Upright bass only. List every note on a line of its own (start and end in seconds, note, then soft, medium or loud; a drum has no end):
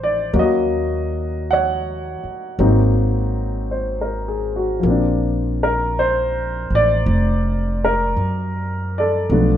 0.00 0.28 A1 medium
0.34 2.18 D#2 medium
2.24 muted upright bass stroke soft
2.59 4.78 G#1 medium
4.83 6.67 A#1 medium
6.70 7.03 A1 medium
7.06 8.14 F1 medium
8.17 9.26 F#2 medium
9.30 9.57 B1 medium